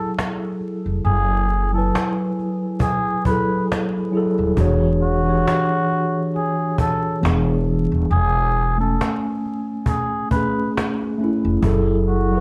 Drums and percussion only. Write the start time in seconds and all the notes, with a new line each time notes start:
0.18 cajon slap
0.61 cajon slap
1.05 cajon slap
1.51 cajon slap
1.95 cajon slap
2.39 cajon slap
2.80 cajon bass
3.25 cajon bass
3.72 cajon slap
3.97 cajon slap
4.14 cajon slap
4.57 cajon bass
5.03 cajon slap
5.47 cajon slap
5.92 cajon slap
6.36 cajon slap
6.78 cajon bass
7.25 cajon slap
7.67 cajon slap
8.12 cajon slap
8.57 cajon slap
9.01 cajon slap
9.46 cajon slap
9.86 cajon bass
10.31 cajon bass
10.77 cajon slap
11.03 cajon slap
11.19 cajon slap
11.63 cajon bass
12.09 cajon slap